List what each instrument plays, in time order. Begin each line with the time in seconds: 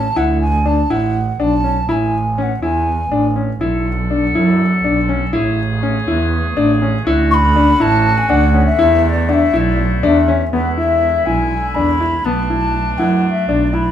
Already playing: double bass A1, flute A5
0.16 double bass D2, grand piano E4, flute F#5
0.40 flute G#5
0.66 grand piano D4, flute A5
0.90 double bass A1, grand piano E4, flute F#5
1.39 double bass B1, grand piano D4, flute A5
1.64 grand piano C#4
1.88 double bass A1, grand piano E4, flute G#5 B5
2.38 grand piano C#4, flute F#5 G#5
2.62 double bass E2, grand piano E4, flute G#5
3.11 double bass A1, grand piano D4
3.36 grand piano C#4
3.60 double bass B1, woodwind section D3 B3 A4, grand piano E4
4.10 grand piano D4
4.35 double bass F#2, grand piano E4
4.84 double bass B1, grand piano D4
5.09 grand piano C#4
5.33 double bass A1, woodwind section C#3 A3 G#4, grand piano E4
5.83 grand piano C#4
6.08 double bass E2, grand piano E4
6.57 double bass A1, grand piano D4
6.82 grand piano C#4
7.05 double bass D2, woodwind section D3 C#4 F#4, grand piano E4
7.30 flute B5 C#6
7.56 grand piano D4
7.80 double bass A1, grand piano E4, flute A5
8.17 flute G#5
8.29 double bass D2, grand piano D4, flute F#5
8.54 grand piano C#4
8.66 flute E5
8.78 double bass E2, woodwind section A3 E4, grand piano E4
9.05 flute D5 E5
9.29 grand piano D4, flute F#5
9.33 flute E5
9.54 double bass B1, grand piano E4, flute E5
9.60 flute D5
10.03 double bass E2, grand piano D4, flute E5
10.28 grand piano C#4
10.51 double bass E2, woodwind section D3 G#3 E4, grand piano B3, flute F#5
10.77 grand piano E4, flute E5
11.25 double bass B1, grand piano E4, flute G#5
11.74 double bass E2, grand piano D4, flute B5
12.00 grand piano E4
12.24 double bass B1, woodwind section B2 A3 D4, grand piano B3, flute A5
12.50 grand piano E4
12.97 double bass F#2, grand piano E4, flute F#5
13.31 flute E5
13.48 double bass B1, grand piano D4, flute D5
13.73 grand piano E4, flute B5